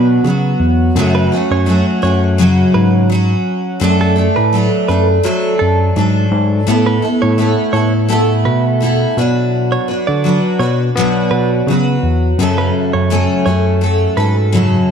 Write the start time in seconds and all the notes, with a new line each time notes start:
Already playing: B2 F#3 B3 D4 F#4
0.24 C#3 F#3 B3 F#4
0.60 E2
0.95 F#2 C#3 F#3 A3 C#4 F#4
1.15 B4
1.32 F#3 A3 C#4 F#4
1.51 F#2 C#5
1.66 F#3 A3 C#4 F#4
2.02 F#2 F#3 A3 C#4 F#4 C#5
2.38 F#2 C#3 F#3 C#4 F#4
2.74 G#2 B4
3.10 F#3 C#4 F#4
3.80 F#2 F#3 A3 D4 A4
4.01 A4
4.16 A3 D4 A4
4.36 A2 B4
4.53 F#3 A3 D4 A4
4.88 F#2 A3 D4 A4 B4
5.23 F#3 A3 D4 A4
5.59 F#2 A4
5.96 G#2 F#3 D4 A4
6.32 G#2
6.67 A2 A3 B3 E4 A4
6.86 B4
7.02 B3 E4 A4
7.22 A2 C#5
7.38 A3 B3 E4 A4
7.73 A2 B3 E4 A4 C#5
8.08 A3 B3 E4 A4
8.45 B2 B4
8.80 A3 B3 E4 A4
9.17 B2 F#3 D4 F#4 B4
9.72 C#5
9.88 D4 F#4 B4
10.07 D3 D5
10.24 F#3 D4 F#4 B4
10.59 B2 D4 F#4 B4 C#5
10.96 B2 F#3 B3 D4 F#4 B4
11.31 B2 B4
11.67 C#3 F#3 F#4
11.71 B4
12.03 E2
12.38 F#2 C#3 F#3 A3 C#4 A4
12.58 B4
12.93 F#2 C#5
13.10 F#2 C#3 F#3 A3 C#4 A4
13.46 F#2 F#3 A3 C#4 A4 C#5
13.81 F#3 A3 C#4 A4
14.17 G#2 F#3 C#4 A4 B4
14.52 F#2 C#3 F#3 C#4 A4